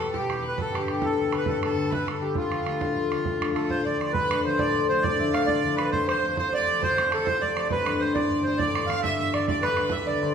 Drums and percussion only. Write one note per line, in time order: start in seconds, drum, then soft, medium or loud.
0.08 bodhran soft
0.14 bodhran medium
0.30 bodhran medium
0.58 bodhran medium
0.75 bodhran medium
0.88 bodhran medium
1.02 bodhran medium
1.32 bodhran medium
1.46 bodhran medium
1.63 bodhran medium
1.84 bodhran soft
1.92 bodhran medium
2.08 bodhran medium
2.35 bodhran medium
2.52 bodhran medium
2.67 bodhran medium
2.81 bodhran medium
3.12 bodhran medium
3.25 bodhran medium
3.42 bodhran medium
3.56 bodhran medium
3.64 bodhran soft
3.70 bodhran medium
4.01 bodhran soft
4.14 bodhran medium
4.31 bodhran medium
4.59 bodhran medium
5.04 bodhran medium
5.34 bodhran medium
5.48 bodhran medium
5.64 bodhran soft
5.79 bodhran medium
5.93 bodhran medium
6.09 bodhran medium
6.37 bodhran medium
6.53 bodhran soft
6.83 bodhran medium
6.98 bodhran medium
7.12 bodhran medium
7.27 bodhran medium
7.44 bodhran soft
7.57 bodhran medium
7.70 bodhran medium
7.86 bodhran medium
8.16 bodhran medium
8.31 bodhran soft
8.59 bodhran medium
8.75 bodhran medium
8.90 bodhran medium
9.04 bodhran medium
9.20 bodhran soft
9.34 bodhran medium
9.48 bodhran medium
9.63 bodhran medium
9.77 bodhran medium
9.90 bodhran medium